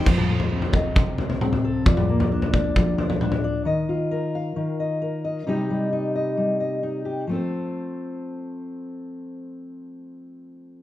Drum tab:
CC |x---------------|----------------|----------------|----------------|
T2 |-o----------o---|-o----------o---|----------------|----------------|
FT |o--o-oo-o-oo-o--|o--o-oo-o-oo-o--|----------------|----------------|
BD |o-----o-o-------|o-----o-o-------|----------------|----------------|

CC |----------------|----------------|
T2 |----------------|----------------|
FT |----------------|----------------|
BD |----------------|----------------|